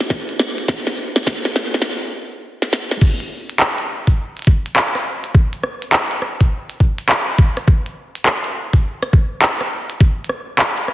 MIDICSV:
0, 0, Header, 1, 2, 480
1, 0, Start_track
1, 0, Tempo, 582524
1, 565, Time_signature, 4, 2, 24, 8
1, 9010, End_track
2, 0, Start_track
2, 0, Title_t, "Drums"
2, 3, Note_on_c, 9, 38, 55
2, 79, Note_on_c, 9, 69, 43
2, 83, Note_on_c, 9, 36, 93
2, 84, Note_off_c, 9, 38, 0
2, 84, Note_on_c, 9, 38, 92
2, 161, Note_off_c, 9, 69, 0
2, 165, Note_off_c, 9, 36, 0
2, 166, Note_off_c, 9, 38, 0
2, 239, Note_on_c, 9, 42, 37
2, 322, Note_off_c, 9, 42, 0
2, 324, Note_on_c, 9, 69, 102
2, 325, Note_on_c, 9, 38, 87
2, 406, Note_off_c, 9, 69, 0
2, 408, Note_off_c, 9, 38, 0
2, 471, Note_on_c, 9, 69, 52
2, 480, Note_on_c, 9, 42, 68
2, 553, Note_off_c, 9, 69, 0
2, 562, Note_off_c, 9, 42, 0
2, 563, Note_on_c, 9, 36, 97
2, 564, Note_on_c, 9, 38, 91
2, 567, Note_on_c, 9, 69, 42
2, 645, Note_off_c, 9, 36, 0
2, 647, Note_off_c, 9, 38, 0
2, 649, Note_off_c, 9, 69, 0
2, 716, Note_on_c, 9, 38, 80
2, 716, Note_on_c, 9, 42, 37
2, 798, Note_off_c, 9, 38, 0
2, 798, Note_off_c, 9, 42, 0
2, 798, Note_on_c, 9, 69, 91
2, 880, Note_off_c, 9, 69, 0
2, 955, Note_on_c, 9, 38, 85
2, 955, Note_on_c, 9, 42, 28
2, 956, Note_on_c, 9, 69, 56
2, 1015, Note_off_c, 9, 42, 0
2, 1015, Note_on_c, 9, 42, 40
2, 1038, Note_off_c, 9, 38, 0
2, 1039, Note_off_c, 9, 69, 0
2, 1043, Note_on_c, 9, 36, 102
2, 1046, Note_on_c, 9, 38, 94
2, 1051, Note_on_c, 9, 69, 44
2, 1096, Note_off_c, 9, 42, 0
2, 1096, Note_on_c, 9, 42, 52
2, 1125, Note_off_c, 9, 36, 0
2, 1129, Note_off_c, 9, 38, 0
2, 1133, Note_off_c, 9, 69, 0
2, 1178, Note_off_c, 9, 42, 0
2, 1196, Note_on_c, 9, 38, 81
2, 1196, Note_on_c, 9, 42, 50
2, 1279, Note_off_c, 9, 38, 0
2, 1279, Note_off_c, 9, 42, 0
2, 1284, Note_on_c, 9, 38, 106
2, 1284, Note_on_c, 9, 69, 97
2, 1366, Note_off_c, 9, 38, 0
2, 1366, Note_off_c, 9, 69, 0
2, 1436, Note_on_c, 9, 38, 84
2, 1436, Note_on_c, 9, 42, 70
2, 1442, Note_on_c, 9, 69, 54
2, 1497, Note_off_c, 9, 38, 0
2, 1497, Note_on_c, 9, 38, 69
2, 1519, Note_off_c, 9, 42, 0
2, 1524, Note_off_c, 9, 69, 0
2, 1579, Note_off_c, 9, 38, 0
2, 2160, Note_on_c, 9, 38, 54
2, 2242, Note_off_c, 9, 38, 0
2, 2248, Note_on_c, 9, 38, 79
2, 2330, Note_off_c, 9, 38, 0
2, 2401, Note_on_c, 9, 38, 80
2, 2483, Note_off_c, 9, 38, 0
2, 2484, Note_on_c, 9, 36, 120
2, 2486, Note_on_c, 9, 49, 104
2, 2566, Note_off_c, 9, 36, 0
2, 2568, Note_off_c, 9, 49, 0
2, 2639, Note_on_c, 9, 42, 38
2, 2721, Note_off_c, 9, 42, 0
2, 2880, Note_on_c, 9, 42, 70
2, 2963, Note_off_c, 9, 42, 0
2, 2965, Note_on_c, 9, 39, 116
2, 3047, Note_off_c, 9, 39, 0
2, 3118, Note_on_c, 9, 42, 55
2, 3200, Note_off_c, 9, 42, 0
2, 3356, Note_on_c, 9, 42, 72
2, 3357, Note_on_c, 9, 36, 60
2, 3439, Note_off_c, 9, 36, 0
2, 3439, Note_off_c, 9, 42, 0
2, 3599, Note_on_c, 9, 42, 26
2, 3620, Note_off_c, 9, 42, 0
2, 3620, Note_on_c, 9, 42, 32
2, 3644, Note_off_c, 9, 42, 0
2, 3644, Note_on_c, 9, 42, 38
2, 3664, Note_off_c, 9, 42, 0
2, 3664, Note_on_c, 9, 42, 45
2, 3684, Note_on_c, 9, 36, 105
2, 3746, Note_off_c, 9, 42, 0
2, 3766, Note_off_c, 9, 36, 0
2, 3839, Note_on_c, 9, 42, 69
2, 3922, Note_off_c, 9, 42, 0
2, 3925, Note_on_c, 9, 39, 125
2, 4007, Note_off_c, 9, 39, 0
2, 4080, Note_on_c, 9, 37, 39
2, 4080, Note_on_c, 9, 42, 39
2, 4163, Note_off_c, 9, 37, 0
2, 4163, Note_off_c, 9, 42, 0
2, 4317, Note_on_c, 9, 42, 69
2, 4400, Note_off_c, 9, 42, 0
2, 4405, Note_on_c, 9, 36, 126
2, 4487, Note_off_c, 9, 36, 0
2, 4556, Note_on_c, 9, 42, 39
2, 4639, Note_off_c, 9, 42, 0
2, 4643, Note_on_c, 9, 37, 55
2, 4725, Note_off_c, 9, 37, 0
2, 4797, Note_on_c, 9, 42, 69
2, 4879, Note_off_c, 9, 42, 0
2, 4883, Note_on_c, 9, 39, 124
2, 4966, Note_off_c, 9, 39, 0
2, 5035, Note_on_c, 9, 42, 52
2, 5118, Note_off_c, 9, 42, 0
2, 5124, Note_on_c, 9, 37, 38
2, 5207, Note_off_c, 9, 37, 0
2, 5278, Note_on_c, 9, 42, 71
2, 5279, Note_on_c, 9, 36, 67
2, 5361, Note_off_c, 9, 36, 0
2, 5361, Note_off_c, 9, 42, 0
2, 5517, Note_on_c, 9, 42, 54
2, 5600, Note_off_c, 9, 42, 0
2, 5606, Note_on_c, 9, 36, 64
2, 5688, Note_off_c, 9, 36, 0
2, 5755, Note_on_c, 9, 42, 72
2, 5837, Note_off_c, 9, 42, 0
2, 5843, Note_on_c, 9, 39, 127
2, 5926, Note_off_c, 9, 39, 0
2, 6085, Note_on_c, 9, 36, 115
2, 6167, Note_off_c, 9, 36, 0
2, 6238, Note_on_c, 9, 37, 40
2, 6238, Note_on_c, 9, 42, 68
2, 6320, Note_off_c, 9, 37, 0
2, 6320, Note_off_c, 9, 42, 0
2, 6325, Note_on_c, 9, 36, 127
2, 6407, Note_off_c, 9, 36, 0
2, 6478, Note_on_c, 9, 42, 38
2, 6561, Note_off_c, 9, 42, 0
2, 6719, Note_on_c, 9, 42, 69
2, 6801, Note_off_c, 9, 42, 0
2, 6805, Note_on_c, 9, 39, 127
2, 6887, Note_off_c, 9, 39, 0
2, 6956, Note_on_c, 9, 42, 53
2, 7039, Note_off_c, 9, 42, 0
2, 7197, Note_on_c, 9, 36, 66
2, 7197, Note_on_c, 9, 42, 72
2, 7279, Note_off_c, 9, 36, 0
2, 7279, Note_off_c, 9, 42, 0
2, 7437, Note_on_c, 9, 37, 52
2, 7437, Note_on_c, 9, 42, 54
2, 7519, Note_off_c, 9, 37, 0
2, 7519, Note_off_c, 9, 42, 0
2, 7524, Note_on_c, 9, 36, 106
2, 7607, Note_off_c, 9, 36, 0
2, 7762, Note_on_c, 9, 39, 125
2, 7845, Note_off_c, 9, 39, 0
2, 7916, Note_on_c, 9, 37, 37
2, 7916, Note_on_c, 9, 42, 40
2, 7999, Note_off_c, 9, 37, 0
2, 7999, Note_off_c, 9, 42, 0
2, 8155, Note_on_c, 9, 42, 70
2, 8237, Note_off_c, 9, 42, 0
2, 8244, Note_on_c, 9, 36, 127
2, 8326, Note_off_c, 9, 36, 0
2, 8442, Note_on_c, 9, 42, 36
2, 8482, Note_on_c, 9, 37, 52
2, 8524, Note_off_c, 9, 42, 0
2, 8565, Note_off_c, 9, 37, 0
2, 8724, Note_on_c, 9, 39, 120
2, 8806, Note_off_c, 9, 39, 0
2, 8879, Note_on_c, 9, 42, 51
2, 8962, Note_off_c, 9, 42, 0
2, 8967, Note_on_c, 9, 37, 36
2, 9010, Note_off_c, 9, 37, 0
2, 9010, End_track
0, 0, End_of_file